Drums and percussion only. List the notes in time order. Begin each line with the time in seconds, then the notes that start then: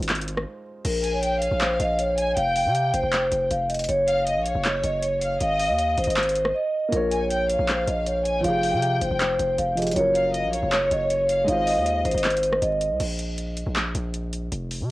0.03 closed hi-hat
0.09 clap, closed hi-hat
0.15 closed hi-hat
0.21 closed hi-hat
0.28 closed hi-hat
0.37 cross-stick
0.85 closed hi-hat, crash
1.04 closed hi-hat
1.23 closed hi-hat
1.42 closed hi-hat
1.61 clap, closed hi-hat
1.80 closed hi-hat
1.99 closed hi-hat
2.18 closed hi-hat
2.37 closed hi-hat
2.56 open hi-hat
2.75 closed hi-hat
2.94 closed hi-hat
3.13 clap, closed hi-hat
3.32 closed hi-hat
3.51 closed hi-hat
3.70 closed hi-hat
3.74 closed hi-hat
3.79 closed hi-hat
3.84 closed hi-hat
3.89 closed hi-hat
4.08 closed hi-hat
4.27 closed hi-hat
4.46 closed hi-hat
4.65 clap, closed hi-hat
4.84 closed hi-hat
5.03 closed hi-hat
5.22 closed hi-hat
5.41 closed hi-hat
5.60 open hi-hat
5.79 closed hi-hat
5.98 closed hi-hat
6.04 closed hi-hat
6.10 closed hi-hat
6.17 clap, closed hi-hat
6.23 closed hi-hat
6.29 closed hi-hat
6.36 closed hi-hat
6.45 cross-stick
6.92 closed hi-hat
7.11 closed hi-hat
7.30 closed hi-hat
7.49 closed hi-hat
7.68 clap, closed hi-hat
7.87 closed hi-hat
8.06 closed hi-hat
8.25 closed hi-hat
8.44 closed hi-hat
8.63 open hi-hat
8.82 closed hi-hat
9.01 closed hi-hat
9.20 clap, closed hi-hat
9.39 closed hi-hat
9.58 closed hi-hat
9.77 closed hi-hat
9.82 closed hi-hat
9.87 closed hi-hat
9.91 closed hi-hat
9.96 closed hi-hat
10.15 closed hi-hat
10.34 closed hi-hat
10.53 closed hi-hat
10.72 clap, closed hi-hat
10.91 closed hi-hat
11.10 closed hi-hat
11.29 closed hi-hat
11.48 closed hi-hat
11.67 open hi-hat
11.86 closed hi-hat
12.05 closed hi-hat
12.11 closed hi-hat
12.18 closed hi-hat
12.24 clap, closed hi-hat
12.30 closed hi-hat
12.37 closed hi-hat
12.43 closed hi-hat
12.53 cross-stick
12.62 closed hi-hat
12.81 closed hi-hat
13.00 closed hi-hat, crash
13.19 closed hi-hat
13.38 closed hi-hat
13.57 closed hi-hat
13.76 clap, closed hi-hat
13.95 closed hi-hat
14.14 closed hi-hat
14.33 closed hi-hat
14.52 closed hi-hat
14.71 open hi-hat